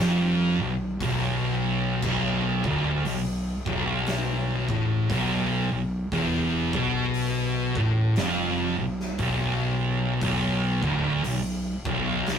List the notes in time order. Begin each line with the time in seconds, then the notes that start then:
Already playing: F2
0.00 F1, snare
0.60 B0 B1
1.00 B0 B1, kick, open hi-hat
2.02 B0 B1, kick, crash
2.64 D1 D2, kick
3.05 B0 B1, open hi-hat
3.66 B0 B1, kick
4.06 snare, open hi-hat
4.68 A1 A2, kick
5.10 B0 B1, kick, open hi-hat
5.71 B0 B1
6.12 E1 E2, kick, open hi-hat
6.73 B1 B2, kick
7.14 open hi-hat
7.75 A1 A2, kick
8.16 F1 F2, snare, open hi-hat
8.78 B0 B1
9.00 snare
9.19 B0 B1, kick, open hi-hat
10.21 B0 B1, kick, open hi-hat
10.83 D1 D2, kick
11.24 B0 B1, open hi-hat
11.85 B0 B1, kick
12.26 snare, open hi-hat